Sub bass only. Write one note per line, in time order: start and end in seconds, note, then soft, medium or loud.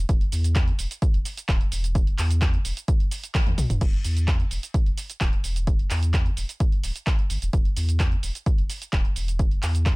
0.09 0.23 E1 loud
0.32 0.72 E2 medium
0.79 0.86 E1 medium
1.14 1.21 E1 loud
1.49 1.63 D1 loud
1.72 2.11 E1 loud
2.18 2.58 E2 medium
2.65 2.72 E1 medium
3.47 3.54 E2 medium
3.58 3.65 B1 medium
3.70 3.77 E1 medium
3.81 3.96 E1 loud
4.05 4.44 E2 medium
4.51 4.58 E1 medium
4.86 4.93 E1 loud
5.21 5.35 D1 loud
5.44 5.83 E1 medium
5.91 6.30 E2 medium
6.37 6.44 E1 medium
6.84 6.91 D1 medium
7.30 7.37 G1 medium
7.42 7.49 E1 loud
7.53 7.68 E1 loud
7.77 8.16 E2 medium
8.23 8.30 E1 medium
8.58 8.65 E1 loud
8.93 9.07 D1 loud
9.16 9.56 E1 loud
9.63 9.96 E2 medium